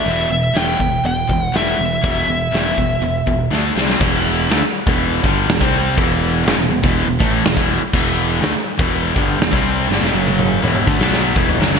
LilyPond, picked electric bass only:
\new Staff \with { instrumentName = "Picked electric bass" } { \clef bass \time 4/4 \key e \minor \tempo 4 = 122 e,,8 e,,8 e,,8 e,,8 e,,8 e,,8 e,,8 e,,8 | e,,8 e,,8 e,,8 e,,8 e,,8 e,,8 d,8 c,8 | e,,4 d,16 r8 e,,8. g,,8 e,,16 c,8. | e,,4 fis,,16 e,,16 e,,16 e,,8 e,,16 a,,8 e,,16 e,,8 r16 |
e,,4 d,16 r8 e,,8. g,,8 e,,16 c,8. | g,,16 e,,16 fis,,4 e,,8 d,16 b,,8. e,,8 fis,,8 | }